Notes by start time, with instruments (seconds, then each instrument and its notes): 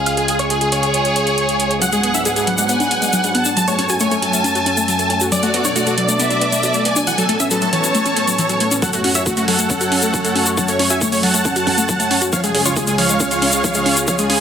Already playing: analog synth pad C#2 C#3 G#3 F4 G#4, violin section G#4
0.06 supersaw synth F5, closed hi-hat
0.17 supersaw synth G#4, closed hi-hat
0.28 supersaw synth G#4, closed hi-hat
0.39 supersaw synth C#5, closed hi-hat
0.50 violin section G#4, supersaw synth G#4, closed hi-hat
0.61 supersaw synth G#4, closed hi-hat
0.72 supersaw synth C#5, closed hi-hat
0.83 closed hi-hat
0.94 closed hi-hat
1.05 closed hi-hat
1.16 closed hi-hat
1.27 closed hi-hat
1.38 closed hi-hat
1.49 closed hi-hat
1.60 closed hi-hat
1.71 closed hi-hat
1.82 analog synth pad G#2 F#3 B3 D4, synth pluck F#3, violin section F#5, supersaw synth F#5, closed hi-hat, shaker
1.92 synth pluck G#3, supersaw synth G#4, closed hi-hat, shaker
2.03 synth pluck B3, supersaw synth G#4, closed hi-hat
2.14 synth pluck D4, supersaw synth E5, closed hi-hat, shaker
2.25 synth pluck G#3, supersaw synth G#4, closed hi-hat, shaker
2.36 synth pluck G#3, supersaw synth G#4, closed hi-hat, shaker
2.47 synth pluck F#3, supersaw synth F#5, closed hi-hat
2.58 synth pluck G#3, closed hi-hat, shaker
2.69 synth pluck B3, violin section G#5, closed hi-hat, shaker
2.80 synth pluck D4, closed hi-hat, shaker
2.91 synth pluck B3, closed hi-hat
3.02 synth pluck G#3, closed hi-hat, shaker
3.13 synth pluck F#3, closed hi-hat, shaker
3.24 synth pluck G#3, closed hi-hat, shaker
3.35 synth pluck B3, violin section A5, closed hi-hat
3.45 synth pluck D4, closed hi-hat, shaker
3.57 analog synth pad F#2 A3 C#4 A4, synth pluck F#3, supersaw synth A5, closed hi-hat, shaker
3.68 synth pluck A3, supersaw synth C#5, closed hi-hat, shaker
3.79 synth pluck C#4, supersaw synth C#5, closed hi-hat
3.89 synth pluck F#4, supersaw synth G#5, closed hi-hat, shaker
4.00 synth pluck A3, supersaw synth C#5, violin section G#5, closed hi-hat, shaker
4.11 synth pluck A3, supersaw synth C#5, closed hi-hat, shaker
4.22 synth pluck F#3, supersaw synth A5, closed hi-hat
4.33 synth pluck A3, closed hi-hat, shaker
4.44 synth pluck C#4, closed hi-hat, shaker
4.55 synth pluck F#4, closed hi-hat, shaker
4.66 synth pluck C#4, closed hi-hat
4.77 synth pluck A3, closed hi-hat, shaker
4.88 synth pluck F#3, closed hi-hat, shaker
4.99 synth pluck A3, closed hi-hat, shaker
5.10 synth pluck C#4, closed hi-hat
5.20 synth pluck F#4, closed hi-hat, shaker
5.32 analog synth pad B2 D4, synth pluck F#3, violin section D5, supersaw synth D5, closed hi-hat, shaker
5.43 synth pluck A3, supersaw synth F#4, closed hi-hat, shaker
5.54 synth pluck B3, supersaw synth F#4, closed hi-hat
5.65 synth pluck D4, supersaw synth C#5, closed hi-hat, shaker
5.76 synth pluck A3, supersaw synth F#4, closed hi-hat, shaker
5.86 synth pluck A3, supersaw synth F#4, closed hi-hat, shaker
5.98 synth pluck F#3, supersaw synth D5, closed hi-hat
6.09 synth pluck A3, closed hi-hat, shaker
6.19 synth pluck B3, violin section E5, closed hi-hat, shaker
6.30 synth pluck D4, closed hi-hat, shaker
6.41 synth pluck B3, closed hi-hat
6.52 synth pluck A3, closed hi-hat, shaker
6.63 synth pluck F#3, closed hi-hat, shaker
6.74 synth pluck A3, closed hi-hat, shaker
6.85 synth pluck B3, violin section G#5, closed hi-hat
6.96 synth pluck D4, closed hi-hat, shaker
7.07 analog synth pad A2 B3 C#4 A4, synth pluck E3, supersaw synth F#5, closed hi-hat, shaker
7.18 synth pluck F#3, supersaw synth A4, closed hi-hat, shaker
7.29 synth pluck A3, supersaw synth A4, closed hi-hat
7.40 synth pluck C#4, supersaw synth E5, closed hi-hat, shaker
7.51 synth pluck F#3, supersaw synth A4, violin section A5, closed hi-hat, shaker
7.62 synth pluck F#3, supersaw synth A4, closed hi-hat, shaker
7.73 synth pluck E3, supersaw synth C#5, closed hi-hat
7.84 synth pluck F#3, closed hi-hat, shaker
7.95 synth pluck A3, closed hi-hat, shaker
8.06 synth pluck C#4, closed hi-hat, shaker
8.17 synth pluck A3, closed hi-hat
8.27 synth pluck F#3, closed hi-hat, shaker
8.38 synth pluck E3, closed hi-hat, shaker
8.49 synth pluck F#3, closed hi-hat, shaker
8.60 synth pluck A3, closed hi-hat
8.71 synth pluck C#4, closed hi-hat, shaker
8.82 analog synth pad F#2 F#3 A3 C#4 C#5, synth pluck F#3, supersaw synth A4 F#5, kick, closed hi-hat, shaker
8.93 synth pluck A3, supersaw synth F#4, closed hi-hat, shaker
9.04 synth pluck C#4, supersaw synth F#4, open hi-hat
9.15 synth pluck F#4, supersaw synth C#5 E5, closed hi-hat, shaker
9.26 synth pluck A3, supersaw synth F#4, kick, closed hi-hat, shaker
9.37 synth pluck A3, supersaw synth F#4, closed hi-hat, shaker
9.48 synth pluck F#3, supersaw synth A4 F#5, open hi-hat
9.59 synth pluck A3, closed hi-hat, shaker
9.70 synth pluck C#4, kick, closed hi-hat, shaker
9.81 synth pluck F#4, closed hi-hat, shaker
9.92 synth pluck C#4, open hi-hat
10.02 synth pluck A3, closed hi-hat, shaker
10.14 synth pluck F#3, kick, closed hi-hat, shaker
10.25 synth pluck A3, closed hi-hat, shaker
10.35 synth pluck C#4, open hi-hat
10.46 synth pluck F#4, closed hi-hat, shaker
10.57 synth pluck F#3, supersaw synth F#5 A5, kick, closed hi-hat, shaker
10.68 synth pluck A3, supersaw synth C#5, closed hi-hat, shaker
10.79 synth pluck C#4, supersaw synth C#5, open hi-hat
10.90 synth pluck F#4, supersaw synth E5 G#5, closed hi-hat, shaker
11.01 synth pluck A3, supersaw synth C#5, kick, closed hi-hat, shaker
11.12 synth pluck A3, supersaw synth C#5, open hi-hat, shaker
11.23 synth pluck F#3, supersaw synth F#5 A5, open hi-hat
11.34 synth pluck A3, closed hi-hat, shaker
11.45 synth pluck C#4, kick, closed hi-hat, shaker
11.56 synth pluck F#4, closed hi-hat, shaker
11.67 synth pluck C#4, kick, open hi-hat
11.78 synth pluck A3, closed hi-hat, shaker
11.89 synth pluck F#3, kick, closed hi-hat, shaker
12.00 synth pluck A3, closed hi-hat, shaker
12.11 synth pluck C#4, open hi-hat
12.22 synth pluck F#4, closed hi-hat, shaker
12.33 analog synth pad C#2 C#3 G#3 F4 G#4, synth pluck F3, supersaw synth C#5 F5, kick, closed hi-hat, shaker
12.44 synth pluck G#3, supersaw synth G#4, closed hi-hat, shaker
12.55 synth pluck C#4, supersaw synth G#4, open hi-hat
12.65 synth pluck F4, supersaw synth F4 C#5, closed hi-hat, shaker
12.76 synth pluck G#3, supersaw synth G#4, kick, closed hi-hat, shaker
12.87 synth pluck G#3, supersaw synth G#4, closed hi-hat, shaker
12.98 synth pluck F3, supersaw synth C#5 F5, open hi-hat
13.09 synth pluck G#3, closed hi-hat, shaker
13.20 synth pluck C#4, kick, closed hi-hat, shaker
13.31 synth pluck F4, closed hi-hat, shaker
13.42 synth pluck C#4, open hi-hat
13.52 synth pluck G#3, closed hi-hat, shaker
13.64 synth pluck F3, kick, closed hi-hat, shaker
13.74 synth pluck G#3, closed hi-hat, shaker
13.86 synth pluck C#4, open hi-hat
13.97 synth pluck F4, closed hi-hat, shaker
14.07 synth pluck F3, supersaw synth C#5 F5, kick, closed hi-hat, shaker
14.18 synth pluck G#3, supersaw synth G#4, closed hi-hat, shaker
14.30 synth pluck C#4, supersaw synth G#4, open hi-hat